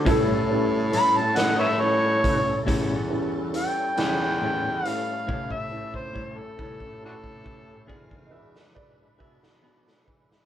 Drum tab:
HH |x---x-x---x-x---x-x---x-|------------------------|
SD |------o-----------o-----|---------------o---o-o-o|
BD |o---------o-o-----------|oo-oo-oo-oo-oo--o-o---o-|